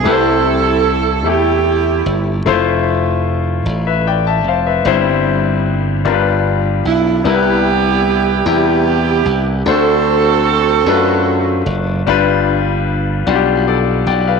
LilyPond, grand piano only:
<<
  \new Staff \with { instrumentName = "Grand piano" } { \time 6/8 \key c \major \tempo 4. = 50 << { r2. | r4. r16 <b' e''>16 <d'' g''>16 <e'' a''>16 <c'' f''>16 <b' e''>16~ | <b' e''>16 r2 r8. | r2. |
r2. | r2 <a' d''>8 <d'' g''>16 <b' f''>16 | } \\ { <a e' g' b' c''>4 r8 <a e' g' a'>4 r8 | <a e' f' c''>4 r2 | <g c' e' c''>4 r8 <g d' f' bes' b'>4 r8 | <g b e' bes' b'>4 r8 <c g e' g'>4 r8 |
<a d' fis' c''>4 r8 <a d' f' fis' b'>4 r8 | <g d' f' b'>4 r8 <g d' f' fis' g'>4 r8 | } >> }
  \new Staff \with { instrumentName = "Grand piano" } { \clef bass \time 6/8 \key c \major c4. r4. | r2. | g,4. g,4. | c4. r4. |
d4. r4. | g,4. r4. | }
>>